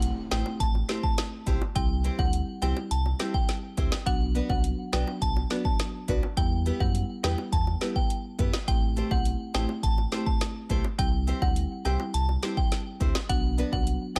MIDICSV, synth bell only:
0, 0, Header, 1, 2, 480
1, 0, Start_track
1, 0, Tempo, 576923
1, 1461, Time_signature, 4, 2, 24, 8
1, 11807, End_track
2, 0, Start_track
2, 0, Title_t, "Synth bell"
2, 0, Program_c, 0, 98
2, 260, Note_on_c, 0, 79, 83
2, 337, Note_off_c, 0, 79, 0
2, 500, Note_on_c, 0, 81, 95
2, 577, Note_off_c, 0, 81, 0
2, 861, Note_on_c, 0, 81, 74
2, 938, Note_off_c, 0, 81, 0
2, 1461, Note_on_c, 0, 79, 100
2, 1538, Note_off_c, 0, 79, 0
2, 1821, Note_on_c, 0, 78, 84
2, 1898, Note_off_c, 0, 78, 0
2, 2181, Note_on_c, 0, 79, 75
2, 2258, Note_off_c, 0, 79, 0
2, 2421, Note_on_c, 0, 81, 87
2, 2498, Note_off_c, 0, 81, 0
2, 2781, Note_on_c, 0, 79, 76
2, 2858, Note_off_c, 0, 79, 0
2, 3382, Note_on_c, 0, 78, 110
2, 3458, Note_off_c, 0, 78, 0
2, 3742, Note_on_c, 0, 78, 79
2, 3818, Note_off_c, 0, 78, 0
2, 4102, Note_on_c, 0, 79, 85
2, 4178, Note_off_c, 0, 79, 0
2, 4341, Note_on_c, 0, 81, 100
2, 4418, Note_off_c, 0, 81, 0
2, 4701, Note_on_c, 0, 81, 76
2, 4778, Note_off_c, 0, 81, 0
2, 5301, Note_on_c, 0, 79, 105
2, 5378, Note_off_c, 0, 79, 0
2, 5661, Note_on_c, 0, 78, 84
2, 5738, Note_off_c, 0, 78, 0
2, 6022, Note_on_c, 0, 79, 73
2, 6098, Note_off_c, 0, 79, 0
2, 6261, Note_on_c, 0, 81, 92
2, 6338, Note_off_c, 0, 81, 0
2, 6621, Note_on_c, 0, 79, 77
2, 6698, Note_off_c, 0, 79, 0
2, 7221, Note_on_c, 0, 79, 109
2, 7298, Note_off_c, 0, 79, 0
2, 7581, Note_on_c, 0, 78, 84
2, 7658, Note_off_c, 0, 78, 0
2, 7940, Note_on_c, 0, 79, 80
2, 8017, Note_off_c, 0, 79, 0
2, 8180, Note_on_c, 0, 81, 97
2, 8257, Note_off_c, 0, 81, 0
2, 8540, Note_on_c, 0, 81, 73
2, 8617, Note_off_c, 0, 81, 0
2, 9141, Note_on_c, 0, 79, 106
2, 9218, Note_off_c, 0, 79, 0
2, 9501, Note_on_c, 0, 78, 85
2, 9578, Note_off_c, 0, 78, 0
2, 9860, Note_on_c, 0, 79, 73
2, 9937, Note_off_c, 0, 79, 0
2, 10101, Note_on_c, 0, 81, 90
2, 10178, Note_off_c, 0, 81, 0
2, 10460, Note_on_c, 0, 79, 78
2, 10537, Note_off_c, 0, 79, 0
2, 11061, Note_on_c, 0, 78, 115
2, 11138, Note_off_c, 0, 78, 0
2, 11421, Note_on_c, 0, 78, 83
2, 11497, Note_off_c, 0, 78, 0
2, 11781, Note_on_c, 0, 79, 85
2, 11807, Note_off_c, 0, 79, 0
2, 11807, End_track
0, 0, End_of_file